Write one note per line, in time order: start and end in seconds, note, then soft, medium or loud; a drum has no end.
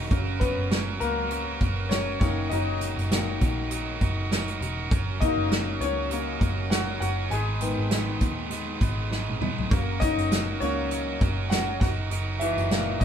0.00 0.11 D#3 medium
0.00 0.10 F#3 medium
0.00 0.11 D#4 medium
0.00 0.12 F#4 medium
0.00 0.12 A#4 medium
0.10 0.55 F#1 medium
0.10 2.17 C#3 soft
0.10 0.70 F#3 medium
0.10 2.17 F#3 soft
0.10 0.70 C#4 medium
0.10 0.72 F#4 medium
0.10 0.72 A#4 medium
0.10 kick loud
0.10 closed hi-hat medium
0.40 0.98 B3 medium
0.40 1.02 B4 medium
0.40 kick medium
0.40 closed hi-hat medium
0.57 0.98 F#1 medium
0.71 1.30 F#3 medium
0.71 1.30 C#4 medium
0.71 1.32 F#4 medium
0.71 1.33 A#4 medium
0.71 snare medium
0.71 closed hi-hat medium
1.00 1.57 C#2 medium
1.00 1.58 A#3 medium
1.00 1.57 A#4 medium
1.00 closed hi-hat medium
1.30 1.61 F#3 medium
1.30 1.61 C#4 medium
1.30 1.61 F#4 medium
1.30 1.59 A#4 medium
1.30 closed hi-hat medium
1.60 2.17 F#1 medium
1.60 1.90 C#4 soft
1.60 1.91 F#4 soft
1.60 1.91 A#4 medium
1.60 kick medium
1.60 closed hi-hat medium
1.89 2.21 F#3 medium
1.89 2.21 C#4 medium
1.89 2.19 C#4 medium
1.89 2.21 F#4 medium
1.89 2.19 A#4 medium
1.89 2.18 C#5 medium
1.89 snare loud
1.89 closed hi-hat medium
2.20 2.49 F#1 medium
2.20 2.62 D#3 soft
2.20 2.63 F#3 soft
2.20 2.63 A#3 medium
2.20 2.49 C#4 medium
2.20 2.50 D#4 soft
2.20 2.51 F#4 soft
2.20 2.51 A#4 soft
2.20 2.48 C#5 medium
2.20 kick medium
2.20 snare soft
2.20 closed hi-hat medium
2.50 2.95 F#1 loud
2.50 3.10 F#3 medium
2.50 3.10 D#4 medium
2.50 3.68 D#4 medium
2.50 3.12 F#4 medium
2.50 3.12 A#4 medium
2.50 3.66 D#5 medium
2.50 closed hi-hat medium
2.81 closed hi-hat medium
2.98 3.38 F#1 medium
2.98 closed hi-hat soft
3.11 3.38 D#3 soft
3.11 3.70 F#3 medium
3.11 3.38 F#3 soft
3.11 3.38 A#3 soft
3.11 3.70 D#4 medium
3.11 3.72 F#4 medium
3.11 3.73 A#4 medium
3.11 snare medium
3.11 closed hi-hat medium
3.41 3.97 A#1 medium
3.41 kick medium
3.41 closed hi-hat medium
3.70 4.01 F#3 medium
3.70 4.01 D#4 medium
3.70 4.01 F#4 medium
3.70 4.00 A#4 medium
3.70 closed hi-hat medium
4.01 4.57 F#1 medium
4.01 4.30 D#4 soft
4.01 4.31 F#4 medium
4.01 4.31 A#4 soft
4.01 kick medium
4.01 closed hi-hat soft
4.30 4.61 F#3 medium
4.30 4.61 D#4 medium
4.30 4.61 F#4 medium
4.30 4.59 A#4 medium
4.30 snare loud
4.30 closed hi-hat medium
4.48 closed hi-hat soft
4.60 4.89 E1 medium
4.60 4.91 D#4 soft
4.60 4.91 F#4 soft
4.60 4.91 A#4 soft
4.60 closed hi-hat medium
4.91 5.35 F#1 medium
4.91 5.49 F#3 medium
4.91 5.50 C#4 medium
4.91 5.51 F#4 medium
4.91 5.52 A#4 medium
4.91 kick loud
4.91 closed hi-hat medium
5.20 6.07 C#3 medium
5.20 6.08 F#3 soft
5.20 6.08 A#3 medium
5.20 5.78 D#4 medium
5.20 5.83 D#5 loud
5.20 kick medium
5.20 closed hi-hat medium
5.38 5.78 F#1 medium
5.51 6.09 F#3 medium
5.51 6.10 C#4 medium
5.51 6.11 F#4 medium
5.51 6.12 A#4 medium
5.51 snare medium
5.51 closed hi-hat medium
5.81 6.37 C#2 medium
5.81 6.38 C#4 medium
5.81 6.37 C#5 medium
5.81 closed hi-hat medium
6.10 6.38 C#3 soft
6.10 6.41 F#3 medium
6.10 6.38 F#3 soft
6.10 6.39 A#3 soft
6.10 6.41 C#4 medium
6.10 6.41 F#4 medium
6.10 6.39 A#4 medium
6.10 closed hi-hat medium
6.40 6.97 F#1 medium
6.40 6.70 C#4 soft
6.40 6.71 F#4 soft
6.40 6.71 A#4 medium
6.40 kick medium
6.40 closed hi-hat medium
6.70 7.01 F#3 medium
6.70 7.01 C#4 medium
6.70 7.01 F#4 medium
6.70 7.00 F#4 medium
6.70 6.99 A#4 medium
6.70 6.99 F#5 medium
6.70 snare loud
6.70 closed hi-hat medium
7.00 7.29 F#1 medium
7.00 7.32 C#4 soft
7.00 7.30 F#4 medium
7.00 7.32 F#4 soft
7.00 7.31 A#4 soft
7.00 7.32 F#5 medium
7.00 closed hi-hat medium
7.31 7.75 G#1 medium
7.31 7.89 G#2 medium
7.31 7.90 D#3 medium
7.31 7.91 G#3 medium
7.31 7.91 B3 medium
7.31 7.91 D#4 medium
7.31 8.48 G#4 medium
7.31 7.92 B4 medium
7.31 8.47 G#5 medium
7.31 closed hi-hat medium
7.61 9.67 D#3 soft
7.61 9.67 G#3 soft
7.61 9.67 B3 medium
7.61 closed hi-hat medium
7.78 8.23 G#1 medium
7.91 8.51 G#2 medium
7.91 8.51 D#3 medium
7.91 8.49 G#3 medium
7.91 8.51 B3 medium
7.91 8.51 D#4 medium
7.91 8.52 B4 medium
7.91 snare loud
7.91 closed hi-hat medium
8.21 8.77 D#2 medium
8.21 kick medium
8.21 closed hi-hat medium
8.50 8.81 G#3 medium
8.50 8.81 B3 medium
8.50 8.80 D#4 medium
8.50 8.79 B4 medium
8.50 closed hi-hat medium
8.80 9.41 G#1 medium
8.80 9.10 G#3 soft
8.80 9.11 B3 soft
8.80 9.11 D#4 soft
8.80 9.11 B4 medium
8.80 kick medium
8.80 closed hi-hat medium
9.10 9.41 G#2 medium
9.10 9.41 D#3 medium
9.10 9.41 G#3 medium
9.10 9.41 B3 medium
9.10 9.40 D#4 medium
9.10 9.39 B4 medium
9.10 snare medium
9.29 high tom medium
9.40 9.69 E1 medium
9.40 9.70 G#3 soft
9.40 9.71 B3 soft
9.40 9.71 D#4 soft
9.40 9.70 B4 soft
9.40 mid tom medium
9.58 floor tom medium
9.71 10.15 F#1 loud
9.71 10.12 C#3 medium
9.71 10.30 F#3 medium
9.71 10.13 F#3 soft
9.71 10.13 A#3 medium
9.71 10.31 C#4 medium
9.71 10.32 F#4 medium
9.71 10.33 A#4 medium
9.71 kick loud
9.71 closed hi-hat medium
10.00 10.58 D#4 medium
10.00 10.62 D#5 loud
10.00 kick medium
10.00 closed hi-hat medium
10.18 10.58 F#1 medium
10.18 closed hi-hat soft
10.31 10.90 F#3 medium
10.31 10.91 C#4 medium
10.31 10.92 F#4 medium
10.31 10.93 A#4 medium
10.31 snare loud
10.31 closed hi-hat medium
10.60 11.17 C#2 medium
10.60 10.88 C#3 soft
10.60 10.88 F#3 soft
10.60 10.89 A#3 soft
10.60 11.18 C#4 medium
10.60 11.17 C#5 loud
10.60 closed hi-hat medium
10.91 11.21 F#3 medium
10.91 11.21 C#4 medium
10.91 11.21 F#4 medium
10.91 11.19 A#4 medium
10.91 closed hi-hat medium
11.21 11.77 F#1 medium
11.21 11.50 C#4 soft
11.21 11.51 F#4 soft
11.21 11.51 A#4 medium
11.21 kick medium
11.21 closed hi-hat medium
11.50 11.81 F#3 medium
11.50 11.81 C#4 medium
11.50 11.80 F#4 medium
11.50 11.59 F#4 medium
11.50 11.79 A#4 medium
11.50 11.57 F#5 medium
11.50 snare loud
11.50 closed hi-hat medium
11.80 12.09 F#1 medium
11.80 12.10 D#4 soft
11.80 12.11 F#4 soft
11.80 11.89 F#4 medium
11.80 12.10 A#4 soft
11.80 11.87 F#5 medium
11.80 kick medium
11.80 snare soft
11.80 closed hi-hat medium
12.10 12.54 F#1 loud
12.10 12.70 F#3 medium
12.10 12.70 D#4 medium
12.10 12.71 F#4 medium
12.10 12.72 A#4 medium
12.10 closed hi-hat medium
12.40 12.97 E3 medium
12.40 13.02 E5 medium
12.40 closed hi-hat medium
12.58 12.98 F#1 medium
12.58 closed hi-hat soft
12.70 13.05 A#2 soft
12.70 13.05 F#3 medium
12.70 13.05 F#3 soft
12.70 13.05 A#3 medium
12.70 13.05 D#4 medium
12.70 13.05 F#4 medium
12.70 13.05 A#4 medium
12.70 snare loud
12.70 closed hi-hat medium
13.00 13.05 A#1 medium
13.00 13.05 D#5 medium
13.00 kick medium
13.00 closed hi-hat medium